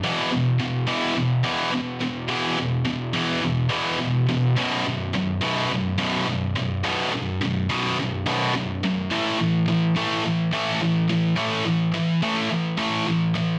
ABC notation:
X:1
M:4/4
L:1/8
Q:1/4=106
K:Emix
V:1 name="Distorted electric guitar" clef=bass
[E,,B,,E,] [E,,B,,] [E,,B,,] [E,,B,,E,] [E,,B,,] [E,,B,,E,] [E,,B,,] [E,,B,,] | [E,,B,,E,] [E,,B,,] [E,,B,,] [E,,B,,E,] [E,,B,,] [E,,B,,E,] [E,,B,,] [E,,B,,] | [B,,,F,,B,,] [B,,,F,,] [B,,,F,,] [B,,,F,,B,,] [B,,,F,,] [B,,,F,,B,,] [B,,,F,,] [B,,,F,,] | [B,,,F,,B,,] [B,,,F,,] [B,,,F,,] [B,,,F,,B,,] [B,,,F,,] [B,,,F,,B,,] [B,,,F,,] [B,,,F,,] |
[A,,E,A,] [A,,E,] [A,,E,] [A,,E,A,] [A,,E,] [A,,E,A,] [A,,E,] [A,,E,] | [A,,E,A,] [A,,E,] [A,,E,] [A,,E,A,] [A,,E,] [A,,E,A,] [A,,E,] [A,,E,] |]